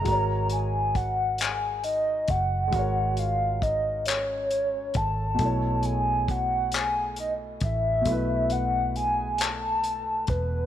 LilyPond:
<<
  \new Staff \with { instrumentName = "Soft synth lead" } { \time 6/8 \key gis \phrygian \tempo 4. = 45 ais''8 gis''8 fis''8 gis''8 dis''8 fis''8~ | fis''8 eis''8 dis''8 cis''4 a''8~ | a''8 gis''8 fis''8 gis''8 dis''8 e''8~ | e''8 fis''8 gis''8 a''4 b'8 | }
  \new Staff \with { instrumentName = "Grand piano" } { \time 6/8 \key gis \phrygian <gis fis' ais' cis''>2. | <gis fis' ais' cis''>2. | <b, a e' cis''>2. | <b, a e' b'>2. | }
  \new Staff \with { instrumentName = "Fingered electric bass" } { \clef bass \time 6/8 \key gis \phrygian gis,,2~ gis,,8 fis,,8 | gis,,2~ gis,,8 gis,,8 | b,,2~ b,,8 a,,8 | b,,2~ b,,8 e,,8 | }
  \new DrumStaff \with { instrumentName = "Drums" } \drummode { \time 6/8 <hh bd>8 hh8 <hh bd>8 <hc hh>8 hh8 <hh bd>8 | <hh bd>8 hh8 <hh bd>8 <hc hh>8 hh8 <hh bd>8 | <hh bd>8 hh8 <hh bd>8 <hc hh>8 hh8 <hh bd>8 | <hh bd>8 hh8 hh8 <hc hh>8 hh8 <hh bd>8 | }
>>